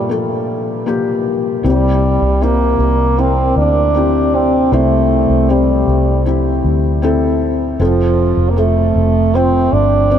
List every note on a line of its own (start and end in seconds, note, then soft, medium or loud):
0.00 1.67 G2 soft
0.00 1.67 A#2 medium
0.00 0.11 G3 medium
0.00 0.09 A#3 soft
0.00 0.10 F4 soft
0.00 0.87 G4 medium
0.09 0.83 A#3 soft
0.09 0.84 F4 soft
0.09 0.84 A4 medium
0.86 1.60 A#3 medium
0.86 1.60 F4 soft
0.86 1.61 G4 medium
1.63 2.18 C2 medium
1.63 2.76 C3 soft
1.63 2.44 G3 medium
1.63 2.37 C4 medium
1.63 2.38 E4 soft
1.63 2.38 G4 medium
2.22 2.76 C2 medium
2.41 3.21 A#3 medium
2.41 3.15 C4 soft
2.41 3.15 E4 soft
2.41 3.15 G4 medium
2.79 3.52 C2 medium
3.17 3.91 C4 soft
3.17 3.57 C4 medium
3.17 3.91 E4 soft
3.17 3.92 A#4 medium
3.56 4.68 D2 medium
3.56 4.36 D4 medium
3.95 4.68 C4 soft
3.95 4.69 E4 soft
3.95 4.69 G4 medium
4.35 4.75 C4 medium
4.72 5.26 C2 medium
4.72 5.84 C3 soft
4.72 5.52 A3 medium
4.72 5.45 C4 medium
4.72 5.46 E4 soft
4.72 5.46 C5 medium
5.30 5.84 C2 medium
5.49 6.27 G3 medium
5.49 6.22 C4 soft
5.49 6.23 E4 soft
5.49 6.23 G4 medium
5.88 6.61 C2 medium
6.26 6.99 C4 soft
6.26 6.99 E4 soft
6.26 7.00 G4 medium
6.64 7.76 D2 medium
7.02 7.76 C4 medium
7.02 7.77 E4 medium
7.02 7.77 A4 medium
7.79 8.34 F1 medium
7.79 8.52 F3 medium
7.79 8.53 C4 medium
7.79 8.53 F4 medium
7.79 8.54 A4 medium
8.37 8.91 F1 medium
8.50 8.60 A#3 medium
8.56 9.37 A3 medium
8.56 9.30 C4 soft
8.56 9.30 F4 soft
8.56 9.31 A4 medium
8.96 9.69 F1 medium
9.33 10.07 C4 soft
9.33 9.74 C4 medium
9.33 10.07 F4 soft
9.33 10.08 C5 medium
9.73 10.19 G1 medium
9.73 10.19 D4 medium
10.10 10.19 C4 medium
10.10 10.19 F4 soft
10.10 10.19 C5 medium